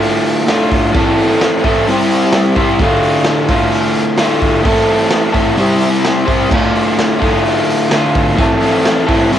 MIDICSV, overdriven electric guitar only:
0, 0, Header, 1, 2, 480
1, 0, Start_track
1, 0, Key_signature, -1, "minor"
1, 0, Tempo, 464756
1, 973, Time_signature, 4, 2, 24, 8
1, 9696, End_track
2, 0, Start_track
2, 0, Title_t, "Overdriven electric guitar"
2, 0, Program_c, 0, 29
2, 0, Note_on_c, 0, 38, 75
2, 0, Note_on_c, 0, 45, 78
2, 0, Note_on_c, 0, 50, 81
2, 0, Note_on_c, 0, 57, 81
2, 0, Note_on_c, 0, 65, 87
2, 471, Note_off_c, 0, 38, 0
2, 477, Note_off_c, 0, 65, 0
2, 482, Note_off_c, 0, 45, 0
2, 482, Note_off_c, 0, 57, 0
2, 483, Note_on_c, 0, 38, 82
2, 484, Note_off_c, 0, 50, 0
2, 494, Note_on_c, 0, 45, 80
2, 508, Note_on_c, 0, 50, 83
2, 509, Note_on_c, 0, 57, 87
2, 522, Note_on_c, 0, 65, 80
2, 947, Note_off_c, 0, 45, 0
2, 953, Note_off_c, 0, 38, 0
2, 960, Note_on_c, 0, 45, 105
2, 965, Note_off_c, 0, 50, 0
2, 965, Note_off_c, 0, 57, 0
2, 969, Note_on_c, 0, 52, 106
2, 972, Note_off_c, 0, 65, 0
2, 979, Note_on_c, 0, 57, 103
2, 982, Note_on_c, 0, 60, 112
2, 996, Note_on_c, 0, 64, 112
2, 998, Note_on_c, 0, 69, 113
2, 1668, Note_off_c, 0, 45, 0
2, 1673, Note_off_c, 0, 52, 0
2, 1677, Note_off_c, 0, 57, 0
2, 1679, Note_off_c, 0, 60, 0
2, 1679, Note_off_c, 0, 69, 0
2, 1684, Note_off_c, 0, 64, 0
2, 1691, Note_on_c, 0, 69, 89
2, 1697, Note_on_c, 0, 64, 86
2, 1710, Note_on_c, 0, 60, 77
2, 1721, Note_on_c, 0, 57, 83
2, 1726, Note_on_c, 0, 52, 84
2, 1733, Note_on_c, 0, 45, 80
2, 1914, Note_off_c, 0, 69, 0
2, 1917, Note_off_c, 0, 64, 0
2, 1921, Note_off_c, 0, 45, 0
2, 1924, Note_off_c, 0, 60, 0
2, 1925, Note_on_c, 0, 48, 94
2, 1929, Note_off_c, 0, 57, 0
2, 1932, Note_off_c, 0, 52, 0
2, 1936, Note_on_c, 0, 55, 110
2, 1939, Note_on_c, 0, 60, 111
2, 1947, Note_on_c, 0, 64, 101
2, 1958, Note_on_c, 0, 67, 101
2, 1964, Note_on_c, 0, 72, 110
2, 2623, Note_off_c, 0, 72, 0
2, 2629, Note_off_c, 0, 48, 0
2, 2631, Note_off_c, 0, 67, 0
2, 2634, Note_off_c, 0, 55, 0
2, 2636, Note_off_c, 0, 60, 0
2, 2636, Note_on_c, 0, 72, 93
2, 2640, Note_off_c, 0, 64, 0
2, 2644, Note_on_c, 0, 67, 93
2, 2653, Note_on_c, 0, 64, 92
2, 2660, Note_on_c, 0, 60, 81
2, 2668, Note_on_c, 0, 55, 81
2, 2676, Note_on_c, 0, 48, 82
2, 2865, Note_off_c, 0, 72, 0
2, 2869, Note_off_c, 0, 67, 0
2, 2873, Note_off_c, 0, 64, 0
2, 2877, Note_off_c, 0, 60, 0
2, 2881, Note_off_c, 0, 48, 0
2, 2881, Note_off_c, 0, 55, 0
2, 2885, Note_on_c, 0, 38, 101
2, 2896, Note_on_c, 0, 45, 96
2, 2911, Note_on_c, 0, 50, 106
2, 2921, Note_on_c, 0, 57, 116
2, 2929, Note_on_c, 0, 65, 111
2, 3588, Note_off_c, 0, 38, 0
2, 3590, Note_off_c, 0, 65, 0
2, 3593, Note_off_c, 0, 45, 0
2, 3601, Note_off_c, 0, 50, 0
2, 3602, Note_off_c, 0, 57, 0
2, 3603, Note_on_c, 0, 65, 98
2, 3615, Note_on_c, 0, 57, 89
2, 3620, Note_on_c, 0, 50, 86
2, 3630, Note_on_c, 0, 45, 77
2, 3641, Note_on_c, 0, 38, 80
2, 4294, Note_off_c, 0, 38, 0
2, 4306, Note_off_c, 0, 65, 0
2, 4306, Note_on_c, 0, 38, 85
2, 4308, Note_off_c, 0, 45, 0
2, 4312, Note_off_c, 0, 50, 0
2, 4313, Note_off_c, 0, 57, 0
2, 4320, Note_on_c, 0, 45, 86
2, 4324, Note_on_c, 0, 50, 81
2, 4336, Note_on_c, 0, 57, 93
2, 4341, Note_on_c, 0, 65, 82
2, 4767, Note_off_c, 0, 45, 0
2, 4775, Note_off_c, 0, 38, 0
2, 4779, Note_on_c, 0, 45, 105
2, 4784, Note_off_c, 0, 57, 0
2, 4788, Note_off_c, 0, 50, 0
2, 4792, Note_on_c, 0, 52, 98
2, 4796, Note_off_c, 0, 65, 0
2, 4796, Note_on_c, 0, 57, 96
2, 4800, Note_on_c, 0, 60, 105
2, 4810, Note_on_c, 0, 64, 118
2, 4815, Note_on_c, 0, 69, 120
2, 5484, Note_off_c, 0, 69, 0
2, 5494, Note_off_c, 0, 64, 0
2, 5496, Note_off_c, 0, 45, 0
2, 5496, Note_on_c, 0, 69, 90
2, 5502, Note_off_c, 0, 52, 0
2, 5504, Note_off_c, 0, 57, 0
2, 5506, Note_off_c, 0, 60, 0
2, 5506, Note_on_c, 0, 64, 88
2, 5518, Note_on_c, 0, 60, 77
2, 5522, Note_on_c, 0, 57, 89
2, 5525, Note_on_c, 0, 52, 75
2, 5535, Note_on_c, 0, 45, 71
2, 5730, Note_off_c, 0, 45, 0
2, 5734, Note_off_c, 0, 69, 0
2, 5734, Note_on_c, 0, 48, 100
2, 5739, Note_off_c, 0, 64, 0
2, 5745, Note_off_c, 0, 60, 0
2, 5747, Note_off_c, 0, 57, 0
2, 5749, Note_off_c, 0, 52, 0
2, 5753, Note_on_c, 0, 55, 108
2, 5759, Note_on_c, 0, 60, 93
2, 5764, Note_on_c, 0, 64, 101
2, 5774, Note_on_c, 0, 67, 99
2, 5776, Note_on_c, 0, 72, 113
2, 6444, Note_off_c, 0, 72, 0
2, 6455, Note_off_c, 0, 48, 0
2, 6456, Note_off_c, 0, 67, 0
2, 6456, Note_on_c, 0, 72, 100
2, 6464, Note_off_c, 0, 55, 0
2, 6467, Note_off_c, 0, 64, 0
2, 6468, Note_off_c, 0, 60, 0
2, 6469, Note_on_c, 0, 67, 83
2, 6480, Note_on_c, 0, 64, 81
2, 6483, Note_on_c, 0, 60, 78
2, 6492, Note_on_c, 0, 55, 81
2, 6500, Note_on_c, 0, 48, 78
2, 6696, Note_off_c, 0, 72, 0
2, 6702, Note_off_c, 0, 48, 0
2, 6702, Note_off_c, 0, 67, 0
2, 6706, Note_on_c, 0, 38, 95
2, 6708, Note_off_c, 0, 64, 0
2, 6709, Note_off_c, 0, 60, 0
2, 6712, Note_off_c, 0, 55, 0
2, 6716, Note_on_c, 0, 45, 111
2, 6725, Note_on_c, 0, 50, 110
2, 6735, Note_on_c, 0, 57, 117
2, 6737, Note_on_c, 0, 65, 113
2, 7413, Note_off_c, 0, 65, 0
2, 7423, Note_off_c, 0, 38, 0
2, 7424, Note_off_c, 0, 57, 0
2, 7425, Note_on_c, 0, 65, 92
2, 7428, Note_off_c, 0, 45, 0
2, 7432, Note_off_c, 0, 50, 0
2, 7436, Note_on_c, 0, 57, 84
2, 7445, Note_on_c, 0, 50, 76
2, 7451, Note_on_c, 0, 45, 77
2, 7463, Note_on_c, 0, 38, 77
2, 8140, Note_off_c, 0, 38, 0
2, 8144, Note_off_c, 0, 65, 0
2, 8148, Note_off_c, 0, 45, 0
2, 8150, Note_off_c, 0, 57, 0
2, 8153, Note_on_c, 0, 38, 80
2, 8154, Note_off_c, 0, 50, 0
2, 8160, Note_on_c, 0, 45, 73
2, 8174, Note_on_c, 0, 50, 87
2, 8177, Note_on_c, 0, 57, 90
2, 8191, Note_on_c, 0, 65, 88
2, 8625, Note_off_c, 0, 45, 0
2, 8629, Note_off_c, 0, 38, 0
2, 8637, Note_on_c, 0, 45, 93
2, 8639, Note_off_c, 0, 50, 0
2, 8641, Note_off_c, 0, 57, 0
2, 8648, Note_off_c, 0, 65, 0
2, 8649, Note_on_c, 0, 52, 110
2, 8658, Note_on_c, 0, 57, 110
2, 8664, Note_on_c, 0, 60, 113
2, 8668, Note_on_c, 0, 64, 102
2, 8680, Note_on_c, 0, 69, 113
2, 9350, Note_off_c, 0, 69, 0
2, 9353, Note_off_c, 0, 45, 0
2, 9359, Note_off_c, 0, 52, 0
2, 9363, Note_off_c, 0, 57, 0
2, 9363, Note_off_c, 0, 64, 0
2, 9363, Note_on_c, 0, 69, 93
2, 9366, Note_off_c, 0, 60, 0
2, 9376, Note_on_c, 0, 64, 89
2, 9380, Note_on_c, 0, 60, 86
2, 9391, Note_on_c, 0, 52, 82
2, 9394, Note_on_c, 0, 57, 79
2, 9406, Note_on_c, 0, 45, 66
2, 9595, Note_off_c, 0, 69, 0
2, 9602, Note_off_c, 0, 64, 0
2, 9604, Note_off_c, 0, 60, 0
2, 9605, Note_off_c, 0, 45, 0
2, 9610, Note_off_c, 0, 52, 0
2, 9610, Note_on_c, 0, 48, 101
2, 9611, Note_off_c, 0, 57, 0
2, 9625, Note_on_c, 0, 55, 91
2, 9630, Note_on_c, 0, 60, 98
2, 9637, Note_on_c, 0, 64, 109
2, 9644, Note_on_c, 0, 67, 104
2, 9647, Note_on_c, 0, 72, 107
2, 9696, Note_off_c, 0, 48, 0
2, 9696, Note_off_c, 0, 55, 0
2, 9696, Note_off_c, 0, 60, 0
2, 9696, Note_off_c, 0, 64, 0
2, 9696, Note_off_c, 0, 67, 0
2, 9696, Note_off_c, 0, 72, 0
2, 9696, End_track
0, 0, End_of_file